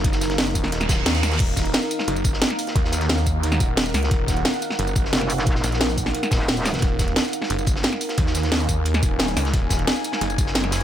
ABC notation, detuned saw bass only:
X:1
M:4/4
L:1/8
Q:1/4=177
K:Ebm
V:1 name="Detuned saw bass" clef=bass
G,,,3 E,,,3 E,,2 | E,,,2 z2 G,,,2 z2 | E,,4- E,, E,,,2 D,, | E,,,2 z2 G,,,2 z2 |
z B,,,3 z4 | E,,,2 z2 G,,,2 z2 | E,,4- E,, E,,,2 D,, | E,,,2 z2 G,,,2 G,,,2 |]